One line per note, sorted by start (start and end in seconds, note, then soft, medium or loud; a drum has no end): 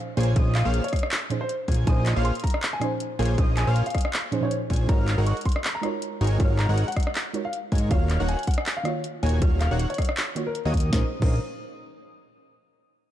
0.00 0.33 A#2 medium
0.00 0.33 F3 medium
0.00 0.34 C#4 medium
0.00 0.34 D#4 medium
0.00 0.35 G#4 medium
0.00 0.35 C5 medium
0.17 0.34 A#1 loud
0.17 0.34 A#3 medium
0.17 0.34 F4 medium
0.17 0.34 G#4 medium
0.17 0.34 C5 medium
0.17 0.34 C#5 medium
0.17 0.34 G#5 loud
0.17 0.34 G#6 loud
0.17 closed hi-hat medium
0.21 closed hi-hat medium
0.23 closed hi-hat medium
0.34 0.63 A#1 loud
0.34 1.27 A#2 medium
0.34 1.28 F3 medium
0.34 0.63 A#3 loud
0.34 1.28 C#4 medium
0.34 1.29 D#4 medium
0.34 0.63 F4 medium
0.34 0.63 G#4 medium
0.34 1.29 G#4 medium
0.34 0.63 C5 medium
0.34 0.63 C#5 medium
0.34 0.63 D#5 loud
0.34 0.63 D#6 loud
0.34 kick loud
0.34 closed hi-hat medium
0.38 1.29 C5 loud
0.55 0.74 F5 loud
0.55 clap medium
0.55 closed hi-hat medium
0.65 0.81 A#1 loud
0.65 0.83 A#3 medium
0.65 0.83 F4 medium
0.65 0.83 G#4 medium
0.65 0.83 C5 medium
0.65 0.83 C#5 medium
0.65 0.83 F5 medium
0.65 0.83 F6 loud
0.74 closed hi-hat medium
0.84 1.03 C#5 loud
0.84 closed hi-hat medium
0.88 closed hi-hat medium
0.93 kick medium
0.93 cross-stick medium
0.93 closed hi-hat medium
0.96 closed hi-hat medium
0.99 closed hi-hat medium
1.03 cross-stick medium
1.12 clap loud
1.12 closed hi-hat medium
1.29 1.37 A#2 medium
1.29 1.37 F3 medium
1.29 1.38 C#4 medium
1.29 1.38 D#4 medium
1.29 1.38 G#4 medium
1.29 1.38 C5 medium
1.29 closed hi-hat medium
1.41 1.53 C5 medium
1.49 closed hi-hat medium
1.68 1.85 A#1 loud
1.68 1.85 A#3 medium
1.68 1.85 F4 medium
1.68 1.85 G#4 medium
1.68 1.85 C5 medium
1.68 1.85 C#5 medium
1.68 1.85 G#5 loud
1.68 1.85 G#6 loud
1.68 kick medium
1.68 closed hi-hat medium
1.72 closed hi-hat medium
1.74 closed hi-hat medium
1.85 2.14 A#1 loud
1.85 2.78 A#2 loud
1.85 2.79 F3 medium
1.85 2.14 A#3 loud
1.85 2.79 C#4 medium
1.85 2.80 D#4 medium
1.85 2.14 F4 medium
1.85 2.14 G#4 medium
1.85 2.80 G#4 medium
1.85 2.14 C5 medium
1.85 2.14 C#5 medium
1.85 2.14 D#5 loud
1.85 2.01 G#5 loud
1.85 2.14 D#6 loud
1.85 kick loud
1.85 closed hi-hat medium
1.89 2.80 C5 loud
2.06 clap medium
2.06 closed hi-hat medium
2.16 2.32 A#1 loud
2.16 2.34 A#3 medium
2.16 2.34 F4 medium
2.16 2.34 G#4 medium
2.16 2.34 C5 medium
2.16 2.34 C#5 medium
2.16 2.34 F5 loud
2.16 2.34 F6 loud
2.25 2.38 C6 medium
2.25 closed hi-hat medium
2.35 closed hi-hat medium
2.40 2.63 A#5 loud
2.40 closed hi-hat medium
2.44 kick medium
2.44 closed hi-hat medium
2.47 closed hi-hat medium
2.50 closed hi-hat medium
2.54 cross-stick medium
2.63 clap loud
2.63 closed hi-hat medium
2.73 2.92 G#5 medium
2.79 3.35 A#2 medium
2.79 3.35 F3 medium
2.79 3.36 C#4 medium
2.79 3.36 D#4 medium
2.79 3.37 G#4 medium
2.79 3.37 C5 loud
2.79 cross-stick medium
2.79 closed hi-hat medium
3.00 closed hi-hat medium
3.19 3.36 A#1 loud
3.19 3.36 A#3 medium
3.19 3.36 F4 medium
3.19 3.36 G#4 medium
3.19 3.36 C5 medium
3.19 3.36 C#5 medium
3.19 3.36 G#5 loud
3.19 3.36 G#6 loud
3.19 closed hi-hat medium
3.23 closed hi-hat medium
3.25 closed hi-hat medium
3.36 3.65 A#1 loud
3.36 4.29 A#2 medium
3.36 4.30 F3 medium
3.36 3.65 A#3 loud
3.36 4.30 C#4 medium
3.36 4.31 D#4 medium
3.36 3.65 F4 medium
3.36 4.31 G#4 medium
3.36 3.65 C5 medium
3.36 3.65 C#5 medium
3.36 3.65 D#5 loud
3.36 3.65 D#6 loud
3.36 kick loud
3.36 closed hi-hat medium
3.40 4.31 C5 loud
3.57 3.76 G#5 loud
3.57 clap medium
3.57 closed hi-hat medium
3.67 3.82 A#1 loud
3.67 3.85 A#3 medium
3.67 3.85 F4 medium
3.67 3.85 G#4 medium
3.67 3.85 C5 medium
3.67 3.85 C#5 medium
3.67 3.85 F5 medium
3.67 3.85 F6 loud
3.76 closed hi-hat medium
3.86 4.06 F5 medium
3.86 closed hi-hat medium
3.90 closed hi-hat medium
3.95 kick medium
3.95 cross-stick medium
3.95 closed hi-hat soft
3.98 closed hi-hat medium
4.01 closed hi-hat medium
4.05 cross-stick medium
4.13 clap loud
4.13 closed hi-hat medium
4.31 4.39 A#2 medium
4.31 4.40 F3 medium
4.31 4.40 C#4 medium
4.31 4.40 D#4 medium
4.31 4.41 G#4 medium
4.31 4.41 C5 loud
4.31 closed hi-hat medium
4.41 4.86 A#2 loud
4.41 4.86 F3 medium
4.41 4.87 C#4 medium
4.41 4.87 D#4 medium
4.41 4.88 G#4 medium
4.41 4.55 C#5 medium
4.45 4.88 C5 loud
4.51 closed hi-hat medium
4.70 4.87 A#1 loud
4.70 4.87 A#3 medium
4.70 4.87 F4 medium
4.70 4.87 G#4 medium
4.70 4.87 C5 medium
4.70 4.87 C#5 medium
4.70 4.87 G#5 loud
4.70 4.87 G#6 loud
4.70 kick medium
4.70 closed hi-hat soft
4.73 closed hi-hat medium
4.76 closed hi-hat medium
4.87 5.16 G#1 loud
4.87 5.80 G#3 loud
4.87 5.16 G#3 loud
4.87 5.81 D#4 medium
4.87 5.16 D#4 medium
4.87 5.81 F4 medium
4.87 5.16 F#4 medium
4.87 5.81 F#4 medium
4.87 5.16 A#4 medium
4.87 5.82 A#4 medium
4.87 5.16 C#5 medium
4.87 5.16 F5 loud
4.87 5.02 A#5 loud
4.87 5.16 F6 loud
4.87 kick loud
4.87 closed hi-hat medium
4.91 5.82 C#5 loud
5.08 clap medium
5.08 closed hi-hat medium
5.18 5.33 G#1 loud
5.18 5.35 G#3 medium
5.18 5.35 D#4 medium
5.18 5.35 F#4 medium
5.18 5.35 A#4 medium
5.18 5.35 C#5 medium
5.18 5.35 F#5 loud
5.18 5.36 F#6 loud
5.27 5.40 C#6 medium
5.27 closed hi-hat medium
5.37 closed hi-hat soft
5.41 closed hi-hat medium
5.45 5.65 C6 loud
5.45 kick medium
5.45 closed hi-hat soft
5.49 closed hi-hat medium
5.52 closed hi-hat medium
5.56 cross-stick medium
5.64 clap loud
5.64 closed hi-hat medium
5.75 5.94 A#5 medium
5.81 6.37 G#3 medium
5.81 6.37 D#4 medium
5.81 6.38 F4 medium
5.81 6.38 F#4 medium
5.81 6.38 A#4 medium
5.81 6.39 C#5 loud
5.81 cross-stick medium
5.81 closed hi-hat medium
6.02 closed hi-hat medium
6.21 6.38 G#1 loud
6.21 6.38 G#3 medium
6.21 6.38 D#4 medium
6.21 6.38 F#4 medium
6.21 6.38 A#4 medium
6.21 6.38 C#5 medium
6.21 6.38 G#5 loud
6.21 6.38 G#6 medium
6.21 closed hi-hat soft
6.24 closed hi-hat medium
6.27 closed hi-hat medium
6.38 6.67 G#1 loud
6.38 7.31 G#3 medium
6.38 6.67 G#3 loud
6.38 7.32 D#4 medium
6.38 6.67 D#4 medium
6.38 7.32 F4 medium
6.38 6.67 F#4 medium
6.38 7.32 F#4 medium
6.38 6.67 A#4 medium
6.38 7.33 A#4 medium
6.38 6.67 C#5 medium
6.38 6.67 F5 loud
6.38 6.67 F6 loud
6.38 kick loud
6.38 closed hi-hat medium
6.42 7.33 C#5 loud
6.59 6.78 A#5 loud
6.59 clap medium
6.59 closed hi-hat medium
6.69 6.84 G#1 loud
6.69 6.86 G#3 medium
6.69 6.86 D#4 medium
6.69 6.86 F#4 medium
6.69 6.86 A#4 medium
6.69 6.86 C#5 medium
6.69 6.86 F#5 medium
6.69 6.86 F#6 loud
6.78 closed hi-hat medium
6.88 7.07 F#5 loud
6.88 closed hi-hat soft
6.92 closed hi-hat medium
6.96 kick medium
6.96 cross-stick medium
6.96 closed hi-hat soft
7.00 closed hi-hat medium
7.03 closed hi-hat medium
7.07 cross-stick medium
7.15 clap loud
7.15 closed hi-hat medium
7.33 7.41 G#3 medium
7.33 7.41 D#4 medium
7.33 7.41 F4 medium
7.33 7.42 F#4 medium
7.33 7.42 A#4 medium
7.33 7.42 C#5 medium
7.33 closed hi-hat medium
7.45 7.57 F5 medium
7.53 closed hi-hat medium
7.72 7.92 G#2 loud
7.72 7.89 G#3 medium
7.72 7.89 D#4 medium
7.72 7.89 F#4 medium
7.72 7.89 A#4 medium
7.72 7.89 C#5 medium
7.72 7.89 G#5 medium
7.72 7.89 G#6 loud
7.72 kick medium
7.72 closed hi-hat soft
7.75 closed hi-hat medium
7.78 closed hi-hat medium
7.89 8.18 D#1 loud
7.89 8.82 D#3 loud
7.89 8.18 D#3 loud
7.89 8.83 A#3 medium
7.89 8.18 A#3 medium
7.89 8.83 F4 medium
7.89 8.18 F#4 medium
7.89 8.84 F#4 medium
7.89 8.18 C#5 medium
7.89 8.18 F5 loud
7.89 8.04 F5 loud
7.89 8.18 F6 loud
7.89 kick loud
7.89 closed hi-hat medium
7.93 8.84 C#5 loud
8.10 clap medium
8.10 closed hi-hat medium
8.20 8.35 D#1 loud
8.20 8.37 D#3 medium
8.20 8.37 A#3 medium
8.20 8.37 F#4 medium
8.20 8.37 C#5 medium
8.20 8.37 F#5 loud
8.20 8.37 F#6 loud
8.28 8.42 G#5 medium
8.28 closed hi-hat medium
8.39 closed hi-hat medium
8.43 closed hi-hat medium
8.47 8.67 F#5 loud
8.47 kick medium
8.47 closed hi-hat medium
8.51 closed hi-hat medium
8.54 closed hi-hat medium
8.58 cross-stick medium
8.66 clap loud
8.66 closed hi-hat medium
8.77 8.96 F5 loud
8.83 9.39 D#3 medium
8.83 9.39 A#3 medium
8.83 9.40 F4 medium
8.83 9.40 F#4 medium
8.83 cross-stick medium
8.83 closed hi-hat medium
8.87 9.41 C#5 loud
9.04 closed hi-hat medium
9.23 9.40 D#1 loud
9.23 9.40 D#3 medium
9.23 9.40 A#3 medium
9.23 9.40 F#4 medium
9.23 9.40 C#5 medium
9.23 9.40 G#5 medium
9.23 9.40 G#6 loud
9.23 closed hi-hat soft
9.26 closed hi-hat medium
9.29 closed hi-hat medium
9.40 9.69 D#1 loud
9.40 10.33 D#3 medium
9.40 9.69 D#3 loud
9.40 10.34 A#3 medium
9.40 10.34 F4 medium
9.40 9.69 F#4 medium
9.40 10.35 F#4 medium
9.40 9.69 C#5 medium
9.40 10.35 C#5 loud
9.40 9.69 F5 loud
9.40 9.69 F6 loud
9.40 kick loud
9.40 closed hi-hat medium
9.61 9.80 F5 loud
9.61 clap medium
9.61 closed hi-hat medium
9.71 9.86 D#1 loud
9.71 9.88 D#3 medium
9.71 9.88 A#3 medium
9.71 9.88 F#4 medium
9.71 9.88 C#5 medium
9.71 9.88 F#5 loud
9.71 9.88 F#6 loud
9.79 closed hi-hat medium
9.90 10.09 C#5 loud
9.90 closed hi-hat medium
9.94 closed hi-hat medium
9.98 kick medium
9.98 cross-stick medium
9.98 closed hi-hat medium
10.02 closed hi-hat medium
10.05 closed hi-hat medium
10.09 cross-stick medium
10.17 clap loud
10.17 closed hi-hat medium
10.35 10.43 D#3 medium
10.35 10.43 A#3 medium
10.35 10.43 F4 medium
10.35 10.44 F#4 medium
10.35 10.44 C#5 medium
10.35 closed hi-hat medium
10.47 10.59 A#4 medium
10.55 closed hi-hat medium
10.65 10.91 D#2 loud
10.65 10.91 D#3 medium
10.65 10.91 A#3 medium
10.65 10.91 F#4 medium
10.65 10.91 C#5 medium
10.65 10.91 D#5 medium
10.65 10.91 D#6 loud
10.74 kick medium
10.74 closed hi-hat medium
10.77 closed hi-hat medium
10.80 closed hi-hat medium
10.90 11.04 A#1 loud
10.90 11.02 A#2 medium
10.90 11.03 F3 medium
10.90 11.04 A#3 medium
10.90 11.04 C#4 medium
10.90 11.04 D#4 medium
10.90 11.04 F4 medium
10.90 11.04 G#4 medium
10.90 11.04 A#4 medium
10.90 11.04 C5 medium
10.90 11.04 C#5 medium
10.90 11.04 D#5 loud
10.90 11.04 D#6 loud
10.90 kick loud
10.90 snare medium
10.95 11.05 G#4 medium
10.95 11.06 C5 loud
11.19 11.40 A#1 loud
11.19 11.34 A#2 medium
11.19 11.35 F3 medium
11.19 11.36 A#3 medium
11.19 11.35 C#4 medium
11.19 11.36 D#4 medium
11.19 11.36 F4 medium
11.19 11.36 G#4 medium
11.19 11.36 A#4 medium
11.19 11.36 C5 medium
11.19 11.36 C#5 medium
11.19 11.36 D#5 loud
11.19 11.36 D#6 loud
11.19 kick loud
11.19 crash medium
11.24 11.37 G#4 medium
11.24 11.37 C5 loud